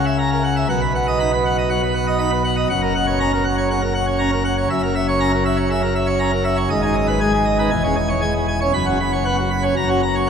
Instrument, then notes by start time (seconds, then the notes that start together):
pipe organ
Already playing: C#2 C#3
0.05 E5
0.19 A#5
0.32 A#4
0.44 F#5
0.56 E5
0.69 B1 B2 F#5
0.81 B4
0.95 F#5
1.08 D#5
1.20 D#4 B5
1.33 B4
1.46 F#5
1.58 D#5
1.70 F#3 F#5
1.83 B4
1.95 F#5
2.07 D#5
2.19 D#4 B5
2.31 B4
2.44 F#5
2.57 D#5
2.69 F#1 F#2 F#5
2.82 A#4
2.95 F#5
3.07 C#5
3.20 C#4 A#5
3.33 A#4
3.45 F#5
3.58 C#5
3.70 C#3 F#5
3.82 A#4
3.95 F#5
4.07 C#5
4.19 C#4 A#5
4.32 A#4
4.45 F#5
4.58 C#5
4.70 F#1 F#2 E5
4.83 A#4
4.95 E5
5.08 C#5
5.20 C#4 A#5
5.33 A#4
5.45 E5
5.57 C#5
5.70 C#3 E5
5.83 A#4
5.95 E5
6.07 C#5
6.19 C#4 A#5
6.32 A#4
6.44 E5
6.57 C#5
6.70 G#1 G#2 D#5
6.82 D#4 G#4
6.95 D#5
7.07 B4
7.21 G#3 G#5
7.33 G#4
7.45 D#5
7.59 D#4 B4
7.70 E1 E2 G#5
7.84 C#4 G#4
7.96 G#5
8.09 C#5
8.21 G#3 G#5
8.34 G#4
8.48 G#5
8.61 C#4 C#5
8.74 F#1 F#2 B5
8.86 C#4 F#4
9.00 B5
9.12 C#5
9.25 B3 F#5
9.38 F#4
9.50 B5
9.63 C#4 C#5
9.77 F#1 F#2 A#5
9.89 C#4 F#4
10.03 A#5
10.15 C#5